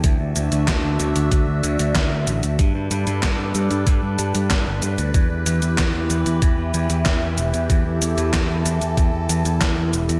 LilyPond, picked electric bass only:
\new Staff \with { instrumentName = "Picked electric bass" } { \clef bass \time 4/4 \key e \minor \tempo 4 = 94 d,16 d,16 d,16 d,16 d,16 d,16 d,16 d,16 d,16 d,16 d,16 d,16 d,16 d,16 a,,16 d,16 | g,16 g,16 g,16 g,16 g,16 g,16 g,16 g,16 g,16 g,16 g,16 g,16 r16 g,,16 g,16 d,16 | e,16 e,16 e,16 e,16 e,16 e,16 e,16 e,16 e,16 e,16 e,16 e,16 e,16 e,16 e,,16 e,16 | e,16 e,16 e,16 e,16 e,16 e,16 e,16 e,16 e,16 e,16 e,16 e,16 r16 e,16 e,,16 e,16 | }